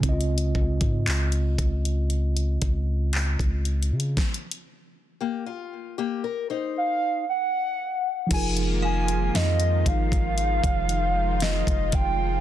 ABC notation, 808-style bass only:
X:1
M:4/4
L:1/16
Q:1/4=58
K:Fm
V:1 name="808-style bass" clef=bass
D,,2 D,, A,, D,,2 D,,4 D,,3 D,,2 D, | z16 | F,,,4 F,,2 A,,,3 F,,,4 F,,,3 |]